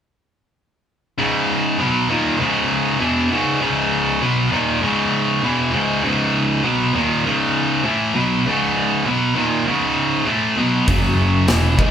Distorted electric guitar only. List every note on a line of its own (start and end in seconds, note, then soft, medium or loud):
1.18 1.78 C#2 medium
1.18 1.78 G#2 medium
1.18 1.79 C#3 medium
1.79 2.08 B2 medium
1.79 2.09 F#3 medium
1.79 2.09 B3 loud
2.09 2.39 D#2 medium
2.09 2.39 A#2 medium
2.09 2.39 D#3 medium
2.39 2.99 C#2 medium
2.39 3.00 G#2 medium
2.39 3.00 C#3 medium
3.00 3.30 E2 medium
3.00 3.30 B2 medium
3.00 3.30 E3 loud
3.31 3.60 C#2 medium
3.31 3.60 G#2 medium
3.31 3.61 C#3 loud
3.61 4.21 C#2 medium
3.61 4.21 G#2 medium
3.61 4.21 C#3 loud
4.22 4.51 B2 medium
4.22 4.51 F#3 medium
4.22 4.52 B3 loud
4.51 4.81 D#2 medium
4.51 4.81 A#2 medium
4.51 4.82 D#3 loud
4.81 5.42 C#2 medium
4.81 5.42 G#2 medium
4.81 5.42 C#3 loud
5.43 5.72 E2 medium
5.43 5.72 B2 loud
5.43 5.73 E3 loud
5.72 6.02 C#2 medium
5.72 6.02 G#2 medium
5.72 6.03 C#3 medium
6.03 6.63 C#2 medium
6.03 6.63 G#2 loud
6.03 6.64 C#3 medium
6.63 6.93 B2 medium
6.63 6.94 F#3 loud
6.63 6.94 B3 loud
6.94 7.23 D#2 medium
6.94 7.24 A#2 medium
6.94 7.24 D#3 loud
7.25 7.83 C#2 medium
7.25 7.85 G#2 medium
7.25 7.85 C#3 medium
7.84 8.14 A2 medium
7.84 8.14 E3 medium
7.84 8.14 A3 medium
8.15 8.44 B2 medium
8.15 8.45 F#3 medium
8.15 8.45 B3 medium
8.46 9.05 C#2 medium
8.46 9.06 G#2 loud
8.46 9.06 C#3 medium
9.05 9.35 B2 medium
9.05 9.35 F#3 medium
9.05 9.36 B3 loud
9.35 9.65 D#2 medium
9.35 9.65 A#2 medium
9.35 9.66 D#3 medium
9.67 10.26 C#2 medium
9.67 10.27 G#2 medium
9.67 10.27 C#3 medium
10.26 10.56 A2 medium
10.26 10.57 E3 medium
10.26 10.57 A3 medium
10.57 10.87 B2 medium
10.57 10.87 F#3 medium
10.57 10.88 B3 medium
10.87 11.47 F#2 medium
10.87 11.47 C#3 medium
10.87 11.48 F#3 loud
11.47 11.77 E2 medium
11.47 11.77 B2 loud
11.47 11.78 E3 medium
11.77 11.91 G#2 medium
11.77 11.91 D#3 medium
11.77 11.91 G#3 medium